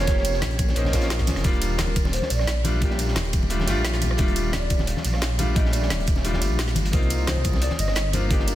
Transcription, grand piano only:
Already playing: A#3 C4 C#4 F4
0.06 A#3 C#4 G4
0.76 A#3 C4 C#4 D#4
0.92 A#3 C4 C#4 F4
1.43 G3 A#3 D4 F4
2.64 G3 A3 D4 F4
2.80 G3 A#3 D4 G4
3.50 G3 A3 D4 F4
3.66 G3 A3 D4 F4
4.17 G3 A3 D4 F4
5.38 G3 A3 D4 F4
5.54 G3 A3 D4 G4
6.24 G3 A3 D4 F4
6.92 A#3 C4 D#4 F4
8.13 A#3 D4 D#4 F4
8.29 A#3 D4 D#4 G4

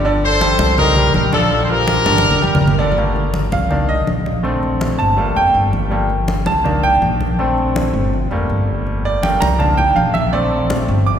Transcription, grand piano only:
0.05 D3 D4 D5
0.41 G3 G4 A4
0.78 D#3 D#4 D#5
0.97 G3 G4 A#4
1.15 G3 G4 A#4
1.33 D3 D4 D5
1.69 F3 F4 A#4
2.06 D3 D4 D5
2.42 G3 G4 A#4
2.78 D3 D4 D5
2.97 G3 A3 A#3
3.53 F5
3.70 D#3 A#3 D4
3.89 D#5
4.43 D3 A3 C4
4.99 A5
5.17 G3 A3 A#3
5.36 G5
5.91 G3 A3 A#3
6.47 A5
6.64 D#3 A#3 D4
6.83 G5
7.39 D3 A3 C4
8.31 G3 A3 A#3
9.05 D5
9.23 G3 A3 A#3 G5
9.40 A#5
9.59 D#3 A#3 D4 A5
9.77 G5
9.96 F5
10.14 E5
10.32 D3 A3 C4 D5
11.06 D6

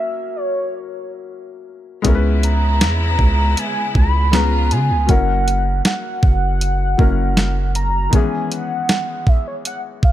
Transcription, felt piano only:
Already playing: F#3 A#3 C#4 E4 A#4
2.02 G#3 B3 C#4
2.07 E4 A#4
2.15 B4
4.31 G#3 B3 C#4 F4 B4
5.06 F#3 A#3 C#4
5.10 E4 A#4
6.97 F#3 A#3 C#4 E4 A#4
8.10 D#3 G#3 B3
8.14 E3 C#4 G#4

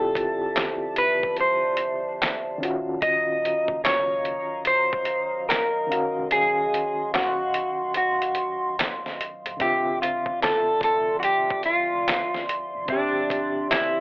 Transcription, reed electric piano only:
Already playing: D3 C4 E4 F4 G4
2.58 D#3 C#4
2.62 F4 F#4
5.87 D#3 C#4
5.91 F#4 F5
9.57 D3 C4
9.61 F4 E5
12.86 D3 C4
12.90 G4 E5

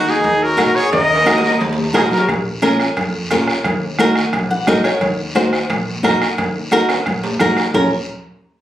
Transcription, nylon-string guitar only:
Already playing: D#4 F#4 A#4
0.57 D#4 F#4 A#4
1.26 D#4 F#4 A#4
1.93 D#4 F#4 A#4
2.62 C#4 F4 A#4
3.31 C#4 F4 A#4
3.99 D#4 F#4 A#4
4.51 F#5
4.67 D#4 F#4 A#4 D#5
4.85 C#5
5.35 D#4 F#4 C5
6.03 D#4 F#4 A#4
6.71 D#4 F#4 A#4
7.40 D#4 F#4 A#4
7.74 C#4 F4 A#4

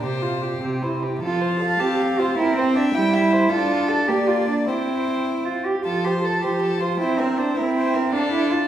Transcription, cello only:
0.01 C3
0.62 C3
1.22 F4
1.60 A4
1.79 G4
2.19 F4
2.37 E4
2.57 C4
2.75 D4
2.94 E4
3.51 F4
3.88 A4
4.08 G4
4.27 F4
4.47 D4
4.66 E4
5.45 F4
5.65 G4
5.86 F4
6.05 G4
6.24 A4
6.43 G4
6.81 F4
7.00 E4
7.19 C4
7.38 D4
7.56 E4
7.94 C4
8.13 D4
8.32 E4
8.52 F4

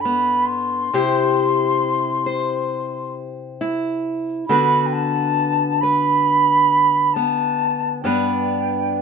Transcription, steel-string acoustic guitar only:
Already playing: G2 D4 A4
0.05 B3
0.93 C3 E4 G4 C5
2.26 C5
3.61 E4
4.49 D3 B3 F#4 B4
5.83 B4
7.16 B3
8.04 G2 B3 D4 B4

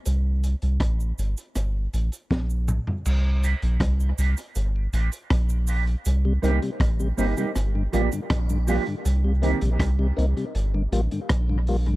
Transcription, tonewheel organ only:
3.25 C3 G3
3.43 A#3 C4 D#4
3.63 G3
4.01 G3
4.18 A#3 C4 D#4
4.39 C3 G3
4.76 G2 D3
4.94 G3 A#3 F4
5.13 G2 D3
5.50 G2 D3
5.68 G3 A#3 F4
5.87 G2 D3
6.25 C3 G3
6.43 A#3 C4 D#4
6.62 C3 G3
7.00 C3 G3
7.18 A#3 C4 D#4
7.37 C3 G3
7.75 G2 D3
7.93 G3 A#3 F4
8.13 G2 D3
8.50 G2 D3
8.68 G3 A#3 F4
8.87 G2 D3
9.24 C3 G3
9.42 A#3 C4 D#4
9.62 C3 G3
9.99 C3 G3
10.17 A#3 C4 D#4
10.37 C3 G3
10.74 G2 D3
10.92 G3 A#3 F4
11.12 G2 D3
11.49 G2 D3
11.69 G3 A#3 F4
11.87 G2 D3

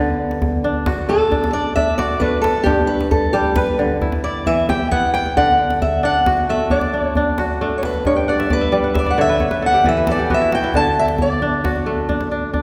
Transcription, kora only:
Already playing: D3 B3 E4 G4
0.64 D4
0.87 F#4
1.09 A3
1.31 D4
1.54 D4
1.76 D4
1.99 F#4
2.21 A3 D4
2.66 G2
3.34 G3
3.57 B4
3.79 D3
4.02 E4
4.24 E4
4.47 E3
4.69 G4
4.92 B3 E4
5.37 D3
6.03 D4
6.26 F#4
6.49 A3
6.71 D4
6.94 D4
7.17 D4
7.39 F#4
7.61 A3 D4
8.06 G2
8.16 G5
8.28 F#5
8.40 E5
8.50 D5
8.61 E5
8.72 G3 D5
8.84 F#5
8.94 E5
9.06 D5
9.18 D3 C#5
9.29 B4
9.40 C#5
9.51 B4
9.62 A4
9.74 G4
9.85 E3 A4
9.97 B4
10.08 A4
10.19 G4
10.30 B3 F#4
10.42 E4
10.53 F#4
10.64 E4
10.75 D3
11.42 D4
11.64 F#4
11.86 A3
12.09 D4
12.31 D4
12.53 D4

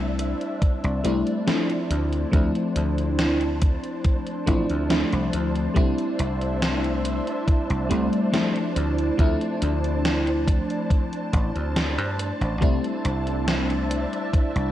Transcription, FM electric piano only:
Already playing: G3 A3 C4 D4 E4
1.04 G3 A3 C4 D4 E4
1.47 F3 A3 C4 D4 E4
2.31 F3 A3 C4 D4 E4
4.46 F3 A3 C4 D4 E4
4.89 F3 A3 C4 D4 E4
5.74 G3 A3 C4 D4 E4
7.89 G3 A3 C4 D4 E4
8.32 F3 A3 C4 D4 E4
9.17 F3 A3 C4 D4 E4
12.61 G3 A3 C4 D4 E4

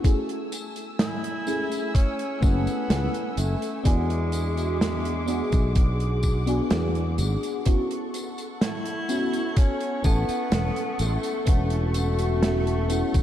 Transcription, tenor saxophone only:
1.00 E4
1.95 C#4
2.42 B3
3.37 A3
3.85 G#3
8.62 E4
9.57 C#4
10.05 B3
11.00 A3
11.07 G#3
11.14 A3
11.48 A3

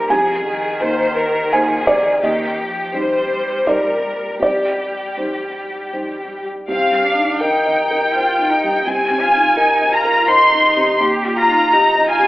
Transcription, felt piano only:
Already playing: A#3 D#4 C5 A#5 C6
0.10 C2 G#5
0.80 A#3 D#4 C5
1.52 A#3 D#4 C5 G#5
1.87 D5
2.23 D#2 D#5
2.93 G3 D#4 C5
3.65 G3 D#4 C5 D5
4.40 C2 D5
5.17 G3 D#4 C5
5.92 G3 D#4 C5
6.68 C2
6.92 G2
7.17 D#4
7.41 A#4
7.66 D#5
7.91 A#4
8.15 C5
8.39 D#4
8.64 G2
8.87 C2
9.11 C3
9.34 D#4
9.57 A#4
9.82 D#5
10.05 A#4
10.27 C5
10.52 D#4
10.77 C3
11.00 D#2
11.26 A#2
11.48 D#4
11.72 G4
11.95 D#5
12.19 G4

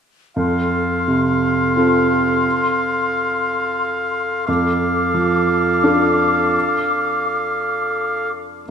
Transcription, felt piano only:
0.36 F2
1.08 C3
1.76 C4 F4 A4
4.48 F2
5.14 F3
5.84 D4 F4 A4

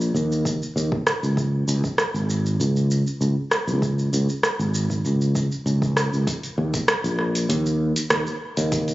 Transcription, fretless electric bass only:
Already playing: A#1
0.14 D#2
0.76 D#2
1.23 C#2
1.68 C#2
2.14 G#1
2.60 C#2
3.21 C#2
3.67 C#2
4.13 C#2
4.59 G#1
5.05 C#2
5.66 C#2
6.12 C#2
6.58 D#2
7.04 A#1
7.49 D#2
8.11 D#2
8.57 D#2

